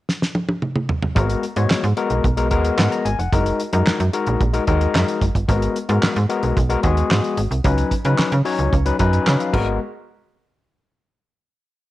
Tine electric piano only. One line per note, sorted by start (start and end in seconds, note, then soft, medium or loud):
1.15 1.44 G#3 medium
1.15 1.44 B3 medium
1.15 1.44 F#4 medium
1.15 1.44 A#4 medium
1.56 1.85 G#3 medium
1.56 1.85 B3 medium
1.56 1.85 F#4 medium
1.56 1.85 C#5 medium
1.97 2.25 G#3 medium
1.97 2.25 B3 medium
1.97 2.26 F#4 medium
1.97 2.26 A#4 loud
2.37 2.47 G#3 medium
2.37 2.47 B3 medium
2.37 2.47 F#4 medium
2.37 2.47 A#4 loud
2.51 3.07 G#3 medium
2.51 3.08 B3 medium
2.51 3.08 F#4 medium
2.51 3.08 A#4 medium
2.78 2.91 F#5 medium
2.92 3.04 A#5 medium
3.05 3.18 G#5 medium
3.19 3.44 F#5 medium
3.32 3.61 G#3 medium
3.32 3.61 D#4 medium
3.32 3.61 F#4 medium
3.32 3.61 A#4 medium
3.73 4.01 G#3 medium
3.73 4.01 D#4 medium
3.73 4.01 F#4 medium
3.73 4.01 A#4 medium
4.13 4.42 G#3 medium
4.13 4.42 D#4 medium
4.13 4.42 F#4 medium
4.13 4.42 A#4 medium
4.53 4.63 G#3 medium
4.53 4.63 D#4 medium
4.53 4.63 F#4 medium
4.53 4.63 A#4 medium
4.67 5.24 G#3 medium
4.67 5.24 D#4 medium
4.67 5.24 F#4 medium
4.67 5.24 A#4 loud
5.48 5.77 G#3 medium
5.48 5.77 B3 medium
5.48 5.77 F#4 medium
5.48 5.77 A#4 medium
5.88 6.17 G#3 medium
5.88 6.17 B3 medium
5.88 6.17 F#4 medium
5.88 6.17 A#4 medium
6.29 6.58 G#3 medium
6.29 6.58 B3 medium
6.29 6.58 F#4 medium
6.29 6.58 A#4 medium
6.69 6.79 G#3 medium
6.69 6.79 B3 medium
6.69 6.80 F#4 medium
6.69 6.80 A#4 loud
6.83 7.40 G#3 medium
6.83 7.40 B3 medium
6.83 7.40 F#4 medium
6.83 7.40 G#4 medium
7.64 7.93 F#3 medium
7.64 7.93 C#4 medium
7.64 7.93 D#4 medium
7.64 7.93 B4 medium
8.05 8.33 F#3 medium
8.05 8.33 C#4 medium
8.05 8.34 D#4 medium
8.05 8.34 B4 medium
8.45 8.74 F#3 medium
8.45 8.74 C#4 medium
8.45 8.74 D#4 medium
8.45 8.74 C#5 loud
8.85 8.95 F#3 medium
8.85 8.95 C#4 medium
8.85 8.95 D#4 medium
8.85 8.96 B4 loud
8.99 9.53 F#3 medium
8.99 9.54 C#4 medium
8.99 9.54 D#4 medium
8.99 9.54 B4 medium
9.40 9.53 F5 medium
9.53 9.79 G#3 medium
9.53 9.79 B3 medium
9.53 9.79 F#4 medium
9.53 9.79 A#4 medium